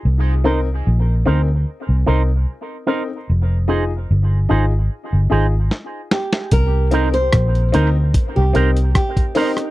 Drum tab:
HH |----------------|----------------|x-xxxxx-x-xxxxox|
SD |----------------|------------o-oo|----r-------r--r|
BD |----------------|----------------|o---o---o---oo--|